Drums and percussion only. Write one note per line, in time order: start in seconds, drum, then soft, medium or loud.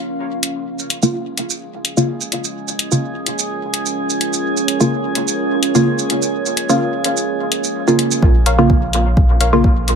0.43 closed hi-hat medium
0.79 shaker soft
0.90 closed hi-hat medium
1.03 shaker soft
1.38 closed hi-hat medium
1.50 shaker soft
1.85 closed hi-hat medium
1.97 shaker soft
2.21 shaker soft
2.32 closed hi-hat medium
2.44 shaker soft
2.68 shaker soft
2.79 closed hi-hat medium
2.92 shaker soft
3.26 closed hi-hat medium
3.39 shaker soft
3.74 closed hi-hat medium
3.86 shaker soft
4.10 shaker soft
4.21 closed hi-hat medium
4.33 shaker soft
4.57 shaker soft
4.68 closed hi-hat medium
4.81 shaker soft
5.15 closed hi-hat medium
5.28 shaker soft
5.63 closed hi-hat medium
5.75 shaker soft
5.99 shaker soft
6.10 closed hi-hat medium
6.22 shaker soft
6.46 shaker soft
6.57 closed hi-hat medium
6.70 shaker soft
7.04 closed hi-hat medium
7.17 shaker soft
7.52 closed hi-hat medium
7.64 shaker soft
7.88 shaker soft
7.99 closed hi-hat medium
8.11 shaker soft
8.22 kick loud
8.46 closed hi-hat medium
8.70 kick loud
8.93 closed hi-hat medium
9.17 kick loud
9.41 closed hi-hat medium
9.64 kick loud
9.88 closed hi-hat medium